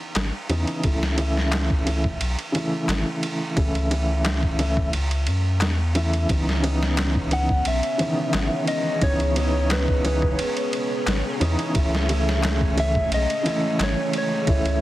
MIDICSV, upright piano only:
0, 0, Header, 1, 2, 480
1, 0, Start_track
1, 0, Tempo, 681818
1, 587, Time_signature, 4, 2, 24, 8
1, 10427, End_track
2, 0, Start_track
2, 0, Title_t, "Upright piano"
2, 0, Program_c, 0, 0
2, 347, Note_on_c, 0, 49, 91
2, 351, Note_on_c, 0, 52, 81
2, 357, Note_on_c, 0, 59, 80
2, 361, Note_on_c, 0, 63, 94
2, 560, Note_off_c, 0, 49, 0
2, 562, Note_off_c, 0, 52, 0
2, 565, Note_off_c, 0, 59, 0
2, 567, Note_off_c, 0, 63, 0
2, 587, Note_on_c, 0, 49, 69
2, 591, Note_on_c, 0, 52, 64
2, 597, Note_on_c, 0, 57, 65
2, 602, Note_on_c, 0, 64, 78
2, 799, Note_off_c, 0, 49, 0
2, 802, Note_off_c, 0, 52, 0
2, 805, Note_off_c, 0, 57, 0
2, 807, Note_off_c, 0, 64, 0
2, 820, Note_on_c, 0, 49, 80
2, 828, Note_on_c, 0, 52, 76
2, 835, Note_on_c, 0, 57, 75
2, 836, Note_on_c, 0, 64, 97
2, 1276, Note_off_c, 0, 49, 0
2, 1280, Note_off_c, 0, 52, 0
2, 1284, Note_off_c, 0, 57, 0
2, 1284, Note_off_c, 0, 64, 0
2, 1303, Note_on_c, 0, 49, 75
2, 1308, Note_on_c, 0, 52, 65
2, 1315, Note_on_c, 0, 57, 63
2, 1320, Note_on_c, 0, 64, 84
2, 1428, Note_off_c, 0, 49, 0
2, 1430, Note_off_c, 0, 52, 0
2, 1434, Note_off_c, 0, 57, 0
2, 1436, Note_off_c, 0, 64, 0
2, 1775, Note_on_c, 0, 49, 91
2, 1787, Note_on_c, 0, 52, 82
2, 1799, Note_on_c, 0, 57, 76
2, 1807, Note_on_c, 0, 64, 91
2, 2474, Note_off_c, 0, 49, 0
2, 2480, Note_off_c, 0, 52, 0
2, 2486, Note_off_c, 0, 57, 0
2, 2490, Note_off_c, 0, 64, 0
2, 2509, Note_on_c, 0, 49, 84
2, 2514, Note_on_c, 0, 52, 74
2, 2519, Note_on_c, 0, 57, 78
2, 2524, Note_on_c, 0, 64, 87
2, 2721, Note_off_c, 0, 49, 0
2, 2723, Note_off_c, 0, 52, 0
2, 2726, Note_off_c, 0, 57, 0
2, 2728, Note_off_c, 0, 64, 0
2, 2751, Note_on_c, 0, 49, 79
2, 2754, Note_on_c, 0, 52, 75
2, 2761, Note_on_c, 0, 57, 67
2, 2766, Note_on_c, 0, 64, 81
2, 3202, Note_off_c, 0, 49, 0
2, 3203, Note_off_c, 0, 52, 0
2, 3207, Note_off_c, 0, 57, 0
2, 3209, Note_off_c, 0, 64, 0
2, 3228, Note_on_c, 0, 49, 90
2, 3233, Note_on_c, 0, 52, 80
2, 3241, Note_on_c, 0, 57, 80
2, 3243, Note_on_c, 0, 64, 91
2, 3417, Note_off_c, 0, 49, 0
2, 3419, Note_off_c, 0, 52, 0
2, 3423, Note_off_c, 0, 57, 0
2, 3424, Note_off_c, 0, 64, 0
2, 4186, Note_on_c, 0, 49, 86
2, 4190, Note_on_c, 0, 52, 81
2, 4195, Note_on_c, 0, 57, 81
2, 4203, Note_on_c, 0, 64, 98
2, 4399, Note_off_c, 0, 49, 0
2, 4401, Note_off_c, 0, 52, 0
2, 4403, Note_off_c, 0, 57, 0
2, 4408, Note_off_c, 0, 64, 0
2, 4428, Note_on_c, 0, 49, 71
2, 4433, Note_on_c, 0, 52, 62
2, 4438, Note_on_c, 0, 59, 62
2, 4440, Note_on_c, 0, 63, 74
2, 4640, Note_off_c, 0, 49, 0
2, 4643, Note_off_c, 0, 52, 0
2, 4645, Note_off_c, 0, 59, 0
2, 4646, Note_off_c, 0, 63, 0
2, 4664, Note_on_c, 0, 49, 83
2, 4666, Note_on_c, 0, 52, 77
2, 4675, Note_on_c, 0, 59, 79
2, 4678, Note_on_c, 0, 63, 97
2, 5118, Note_off_c, 0, 49, 0
2, 5119, Note_off_c, 0, 52, 0
2, 5124, Note_off_c, 0, 59, 0
2, 5125, Note_off_c, 0, 63, 0
2, 5144, Note_on_c, 0, 49, 68
2, 5148, Note_on_c, 0, 52, 64
2, 5153, Note_on_c, 0, 59, 65
2, 5158, Note_on_c, 0, 63, 80
2, 5268, Note_off_c, 0, 49, 0
2, 5270, Note_off_c, 0, 52, 0
2, 5273, Note_off_c, 0, 59, 0
2, 5275, Note_off_c, 0, 63, 0
2, 5617, Note_on_c, 0, 49, 86
2, 5624, Note_on_c, 0, 52, 83
2, 5637, Note_on_c, 0, 59, 83
2, 5646, Note_on_c, 0, 51, 94
2, 6315, Note_off_c, 0, 49, 0
2, 6318, Note_off_c, 0, 52, 0
2, 6325, Note_off_c, 0, 59, 0
2, 6329, Note_off_c, 0, 51, 0
2, 6344, Note_on_c, 0, 49, 81
2, 6348, Note_on_c, 0, 52, 73
2, 6354, Note_on_c, 0, 59, 72
2, 6359, Note_on_c, 0, 63, 85
2, 6558, Note_off_c, 0, 49, 0
2, 6560, Note_off_c, 0, 52, 0
2, 6563, Note_off_c, 0, 59, 0
2, 6566, Note_off_c, 0, 63, 0
2, 6586, Note_on_c, 0, 49, 74
2, 6594, Note_on_c, 0, 52, 70
2, 6596, Note_on_c, 0, 59, 69
2, 6602, Note_on_c, 0, 63, 86
2, 7039, Note_off_c, 0, 49, 0
2, 7043, Note_off_c, 0, 52, 0
2, 7044, Note_off_c, 0, 59, 0
2, 7047, Note_off_c, 0, 63, 0
2, 7068, Note_on_c, 0, 49, 89
2, 7072, Note_on_c, 0, 52, 75
2, 7076, Note_on_c, 0, 59, 74
2, 7082, Note_on_c, 0, 63, 93
2, 7257, Note_off_c, 0, 49, 0
2, 7259, Note_off_c, 0, 52, 0
2, 7260, Note_off_c, 0, 59, 0
2, 7264, Note_off_c, 0, 63, 0
2, 8026, Note_on_c, 0, 49, 90
2, 8029, Note_on_c, 0, 52, 81
2, 8035, Note_on_c, 0, 59, 81
2, 8042, Note_on_c, 0, 63, 104
2, 8239, Note_off_c, 0, 49, 0
2, 8241, Note_off_c, 0, 52, 0
2, 8244, Note_off_c, 0, 59, 0
2, 8247, Note_off_c, 0, 63, 0
2, 8265, Note_on_c, 0, 49, 72
2, 8272, Note_on_c, 0, 52, 61
2, 8275, Note_on_c, 0, 57, 69
2, 8281, Note_on_c, 0, 64, 81
2, 8479, Note_off_c, 0, 49, 0
2, 8482, Note_off_c, 0, 52, 0
2, 8484, Note_off_c, 0, 57, 0
2, 8487, Note_off_c, 0, 64, 0
2, 8508, Note_on_c, 0, 49, 81
2, 8510, Note_on_c, 0, 52, 80
2, 8514, Note_on_c, 0, 57, 78
2, 8520, Note_on_c, 0, 64, 93
2, 8960, Note_off_c, 0, 49, 0
2, 8961, Note_off_c, 0, 52, 0
2, 8963, Note_off_c, 0, 57, 0
2, 8966, Note_off_c, 0, 64, 0
2, 8981, Note_on_c, 0, 49, 70
2, 8988, Note_on_c, 0, 52, 70
2, 8993, Note_on_c, 0, 57, 69
2, 8996, Note_on_c, 0, 64, 86
2, 9107, Note_off_c, 0, 49, 0
2, 9110, Note_off_c, 0, 52, 0
2, 9112, Note_off_c, 0, 57, 0
2, 9114, Note_off_c, 0, 64, 0
2, 9455, Note_on_c, 0, 49, 90
2, 9463, Note_on_c, 0, 52, 83
2, 9471, Note_on_c, 0, 57, 77
2, 9482, Note_on_c, 0, 64, 106
2, 10154, Note_off_c, 0, 49, 0
2, 10158, Note_off_c, 0, 52, 0
2, 10162, Note_off_c, 0, 57, 0
2, 10167, Note_off_c, 0, 64, 0
2, 10187, Note_on_c, 0, 49, 80
2, 10193, Note_on_c, 0, 52, 73
2, 10198, Note_on_c, 0, 57, 81
2, 10202, Note_on_c, 0, 64, 90
2, 10400, Note_off_c, 0, 49, 0
2, 10403, Note_off_c, 0, 52, 0
2, 10405, Note_off_c, 0, 57, 0
2, 10407, Note_off_c, 0, 64, 0
2, 10427, End_track
0, 0, End_of_file